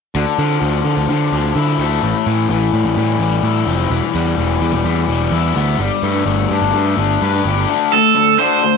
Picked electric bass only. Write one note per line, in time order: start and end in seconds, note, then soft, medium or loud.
0.15 0.24 D2 medium
0.38 0.57 D3 medium
0.62 0.81 D2 medium
0.85 0.95 D3 medium
0.97 1.07 D2 medium
1.09 1.28 D3 medium
1.32 1.51 D2 medium
1.55 1.75 D3 medium
1.79 1.98 D2 medium
2.03 2.12 A1 medium
2.26 2.46 A2 medium
2.49 2.69 A1 medium
2.73 2.83 A2 medium
2.84 2.94 A1 medium
2.96 3.16 A2 medium
3.19 3.39 A1 medium
3.43 3.62 A2 medium
3.66 3.86 F1 medium
3.90 4.00 E1 medium
4.14 4.34 E2 medium
4.38 4.57 E1 medium
4.61 4.71 E2 medium
4.72 4.83 E1 medium
4.84 5.04 E2 medium
5.08 5.27 E1 medium
5.31 5.51 E2 medium
5.56 5.75 D2 medium
5.78 5.89 G1 medium
6.03 6.22 G2 medium
6.26 6.45 G1 medium
6.50 6.60 G2 medium
6.62 6.72 G1 medium
6.74 6.93 G2 medium
6.97 7.17 G1 medium
7.22 7.41 G2 medium
7.45 7.64 G1 medium